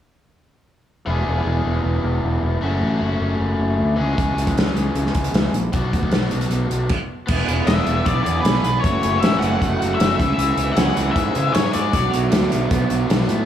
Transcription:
1.06 E1 E3 B3 D4 G#4
1.27 E1
1.45 E1
1.65 E1
1.84 E1
2.03 E1
2.23 E1
2.42 E1
2.61 F#1 A3 C#4 F#4
2.81 A1
3.00 F#1
3.20 F#1
3.40 F#1
3.59 F#1
3.79 D2
3.96 C#2 E3 G#3 C#4 G#4
4.18 C#2, kick, closed hi-hat
4.36 C#2, closed hi-hat
4.47 kick, closed hi-hat
4.56 C#2, snare, closed hi-hat
4.75 C#2, closed hi-hat
4.95 C#2, closed hi-hat
5.06 snare
5.14 C#2, kick, closed hi-hat
5.24 closed hi-hat
5.33 C#2, snare, closed hi-hat
5.53 A#1, closed hi-hat
5.73 B1 F#3 B3 D4 F#4, kick, closed hi-hat
5.93 D2, kick, closed hi-hat
6.03 kick
6.11 B1, snare, closed hi-hat
6.31 B1, closed hi-hat
6.41 closed hi-hat
6.50 B1, closed hi-hat
6.70 B1, closed hi-hat
6.89 kick, crash
7.27 E1 E3 B3 D4, kick, crash
7.31 G#4
7.47 E1 B3, closed hi-hat
7.66 E1 D4 E5, snare, closed hi-hat
7.86 E1 B3, closed hi-hat
8.05 B1 B3 D5, kick, closed hi-hat
8.23 E2 G#4 D5, closed hi-hat
8.40 D4 B4
8.45 B1, snare, closed hi-hat
8.64 B1 B3, closed hi-hat
8.80 E3 F#3 C#5
8.84 F#1 A3 C#4 F#4, kick, closed hi-hat
9.02 F#1 E3, closed hi-hat
9.20 A1 C#4 E5, snare, closed hi-hat
9.38 F#1 F#5
9.42 E3, closed hi-hat
9.61 F#1 A3, kick, closed hi-hat
9.80 F#1 F#4, closed hi-hat
9.95 C#4 E5
10.00 F#1, snare, closed hi-hat
10.16 C#2 C#3 E3 G#3 E5, kick
10.20 C#4 G#4, closed hi-hat
10.34 C#2 E3 E5
10.39 closed hi-hat
10.56 C#2 E3, closed hi-hat
10.73 C#4 F#5, closed hi-hat
10.77 C#2, snare
10.95 C#2 E3, closed hi-hat
11.11 G#3 E5
11.16 G#2, kick, closed hi-hat
11.34 C#3 G#4, closed hi-hat
11.52 G#2 C#4 C#5, snare, closed hi-hat
11.73 G#2 G#3 D5, closed hi-hat
11.92 B1 B2 F#3 B3 D4 F#4, kick, closed hi-hat
12.11 B1 F#3, closed hi-hat
12.30 D2 D4, snare, closed hi-hat
12.50 B1 F#3, closed hi-hat
12.69 B1 B3, kick, closed hi-hat
12.88 B1 F#4, closed hi-hat
13.08 B1 D4, snare, closed hi-hat
13.27 A2 B3, closed hi-hat

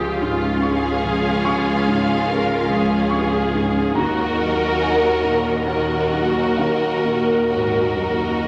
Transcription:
Already playing: C#2 F3 C#4 F4 G4 G#4 F5 G#5 D#6
0.21 G#2 F4
0.62 F4 G#4 C#6
1.05 F3
1.45 C#2 C#6
1.87 G#2
2.28 F4 G#4 A#4
2.69 F3 G#4
3.10 F4 G#4 C#6
3.55 G#2
3.95 D#2 F#4 A#4 D#5 A#5
4.39 F#3 A#4
4.81 D#4 F#4 G#5
5.24 A#2
5.66 D#4 F#4 A#4 D#5 F#5
6.12 F#3 F#4
6.57 D#2 A#4 F5
7.05 A#2
7.50 G#2 D#4 F#4 A#4 D#5
7.96 F#2 F#3
8.41 F2 D#4 F#4

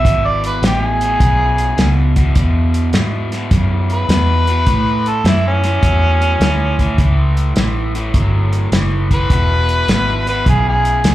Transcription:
Already playing: E5
0.04 G#1 E2 B2, kick, closed hi-hat
0.27 D5
0.44 B4, closed hi-hat
0.62 A1 E2 B2 G4, snare, closed hi-hat
0.85 G#4
1.01 E2 B2, closed hi-hat
1.20 B1 E2 C#3, kick, closed hi-hat
1.58 closed hi-hat
1.77 C#2 E2 B2, snare, closed hi-hat
2.16 E2 B2, kick, closed hi-hat
2.35 E2 B2, kick, closed hi-hat
2.74 closed hi-hat
2.93 E2 G#2 B2, snare, closed hi-hat
3.32 E2 B2, snare, closed hi-hat
3.51 E2 F#2 C#3, kick, closed hi-hat
3.90 B4, closed hi-hat
4.09 E2 B2, snare, closed hi-hat
4.47 E2 B2, closed hi-hat
4.67 A2 E3, kick, closed hi-hat
5.06 A4, closed hi-hat
5.24 F#2 A2 E3 E4, snare, closed hi-hat
5.48 C#4
5.63 A2 E3, snare, closed hi-hat
5.82 E2 A2 F#3, kick, closed hi-hat
6.22 closed hi-hat
6.40 D2 A2 E3, snare, closed hi-hat
6.79 A2 E3, kick, closed hi-hat
6.98 C#2 A2 E3, kick, closed hi-hat
7.37 closed hi-hat
7.56 A1 A2 E3, snare, closed hi-hat
7.95 A2 E3, closed hi-hat
8.14 G1 A2 F#3, kick, closed hi-hat
8.53 closed hi-hat
8.72 F#1 A2 E3, snare, closed hi-hat
9.11 A2 E3 B4, kick, closed hi-hat
9.30 E1 E2 B2, kick, closed hi-hat
9.69 closed hi-hat
9.88 G#1 E2 B2, snare, closed hi-hat
10.27 E2 B2 B4, closed hi-hat
10.46 B1 E2 C#3 G#4, kick, closed hi-hat
10.68 G#4
10.85 closed hi-hat
11.04 D2 E2 B2, snare, closed hi-hat

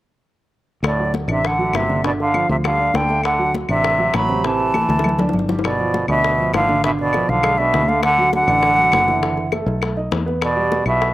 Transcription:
0.83 D2 A2 D5, high bongo, claves
0.99 F#3 F#4, high conga
1.14 high bongo, high conga
1.28 A1 C3 D4 D5 E5, claves
1.44 D3 F#5, high bongo, high conga
1.59 F#3 F#4, high conga
1.73 G1 C3 E5, high bongo, low bongo, high conga, claves
1.89 D3 D4, high conga
2.04 B2 D3 D4 D5, high bongo, high conga
2.19 D3 F5, high bongo, high conga
2.34 F3 F4, high bongo, high conga, claves
2.49 D2 C3 E5, high bongo, high conga
2.64 D3 G3 G4 F5, high bongo, high conga, claves
2.79 D4 D5, high conga
2.93 D2 D3 G5, high bongo, low bongo, high conga
3.09 A3 A4, high bongo, high conga
3.23 D3 F#5, high bongo, high conga, claves
3.39 F#3 F#4, high conga
3.54 high bongo, high conga
3.69 A1 C3 D4 D5 E5, claves
3.84 high bongo, high conga
3.98 F#3 F#4, high conga
4.14 A1 F#3 B5, high bongo, low bongo, high conga, claves
4.29 C3 C4, high conga
4.44 C3 E3 C4 A5, high bongo, high conga
4.59 high bongo, high conga
4.74 E3 E4, high bongo, high conga, claves
4.89 D2, high bongo, high conga
4.99 high bongo
5.04 A3 A4, low conga, claves
5.09 high bongo
5.18 D4 D5, high bongo, low conga
5.29 low bongo
5.33 G1, low conga
5.39 low bongo
5.49 G3 G4, low bongo, low conga
5.59 low bongo
5.63 B2 D5, high bongo, high conga, claves
5.79 F3 F4, high conga
5.94 high bongo, high conga
6.08 D2 B2 D4 D5 E5, claves
6.23 high bongo, high conga
6.38 F3 F4, high conga
6.53 G#1 D3 F5, high bongo, low bongo, high conga, claves
6.69 D3 D4, high conga
6.83 B2 D3 D4 E5, high bongo
6.99 B2 D5, high bongo, high conga
7.13 F3 F4, high bongo, high conga, claves
7.29 B1 D3 F5, high bongo, high conga
7.43 G#3 G#4, high bongo, high conga, claves
7.58 B2 D4 D5 E5, high conga
7.74 D2, high bongo, low bongo, high conga
7.88 D3 A3 A4 F5, high bongo, high conga
8.03 D3 F#5, high bongo, high conga, claves
8.18 F#3 F#4, high conga
8.33 D3 F#5, high bongo, high conga
8.48 A1 D4 D5, claves
8.63 high bongo, high conga
8.78 F#3 F#4, high conga
8.92 F#1, high bongo, low bongo, high conga, claves
9.08 E3 E4, high conga
9.23 E3 E4, high bongo
9.37 high bongo, high conga
9.52 A3 A4, high bongo, high conga, claves
9.66 B1, high bongo, high conga
9.82 A3 A4, high bongo, high conga, claves
9.97 D#4 D#5, high conga
10.11 E2, high bongo, low bongo, high conga
10.26 B3 B4, high bongo
10.41 B2 D5, high bongo, high conga, claves
10.56 G3 G4, high conga
10.72 high bongo, high conga
10.86 B1 B2 E4 E5, claves
11.01 high bongo, high conga

